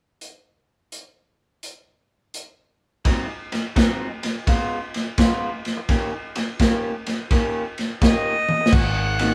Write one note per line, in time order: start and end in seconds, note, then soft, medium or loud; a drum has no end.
0.21 closed hi-hat soft
0.92 closed hi-hat soft
1.63 closed hi-hat soft
2.34 closed hi-hat medium
3.05 3.29 G#2 medium
3.05 3.28 F#3 medium
3.05 3.28 C4 medium
3.05 3.27 D#4 medium
3.05 kick medium
3.05 snare soft
3.05 ride medium
3.28 muted clean electric guitar stroke soft
3.52 muted clean electric guitar stroke soft
3.52 snare soft
3.52 ride medium
3.76 4.07 G#2 medium
3.76 4.07 F#3 medium
3.76 4.07 C4 medium
3.76 4.07 D#4 medium
3.76 kick medium
3.76 snare medium
3.76 ride medium
4.23 muted clean electric guitar stroke soft
4.23 snare soft
4.23 ride medium
4.47 4.78 C#3 medium
4.47 4.78 G#3 medium
4.47 4.78 B3 medium
4.47 4.78 F4 medium
4.47 kick medium
4.47 snare soft
4.47 ride medium
4.94 snare soft
4.94 ride medium
5.18 5.49 C#3 medium
5.18 5.49 G#3 medium
5.18 5.49 B3 medium
5.18 5.49 F4 medium
5.18 kick medium
5.18 snare loud
5.18 ride medium
5.65 snare soft
5.65 ride soft
5.77 muted clean electric guitar stroke soft
5.89 6.13 D#3 medium
5.89 6.13 A#3 medium
5.89 6.12 C#4 medium
5.89 6.11 G4 medium
5.89 kick medium
5.89 snare soft
5.89 ride medium
6.13 muted clean electric guitar stroke soft
6.35 muted clean electric guitar stroke soft
6.35 snare soft
6.35 ride medium
6.59 6.91 D#3 medium
6.59 6.91 A#3 medium
6.59 6.91 C#4 medium
6.59 6.91 G4 medium
6.59 kick medium
6.59 snare loud
6.59 ride medium
7.06 muted clean electric guitar stroke soft
7.06 snare soft
7.06 ride medium
7.31 7.62 D#3 medium
7.31 7.62 A#3 medium
7.31 7.62 C#4 medium
7.31 7.62 G4 medium
7.31 kick medium
7.31 snare soft
7.31 ride medium
7.78 snare soft
7.78 ride soft
8.02 8.32 D#3 medium
8.02 8.33 A#3 medium
8.02 8.33 C#4 medium
8.02 8.33 G4 medium
8.02 8.75 D#5 medium
8.02 kick medium
8.02 snare loud
8.02 ride medium
8.49 high tom soft
8.61 muted clean electric guitar stroke soft
8.66 snare medium
8.72 9.34 G#1 medium
8.72 9.15 G#2 medium
8.72 9.16 D#3 medium
8.72 9.34 F#5 loud
8.72 kick loud
8.72 snare soft
8.72 crash medium
9.19 9.34 G#2 medium
9.19 9.34 D#3 medium
9.19 9.34 A#3 medium
9.19 9.34 C4 medium
9.19 9.34 D#4 medium
9.19 9.34 F#4 medium
9.19 snare soft
9.19 ride medium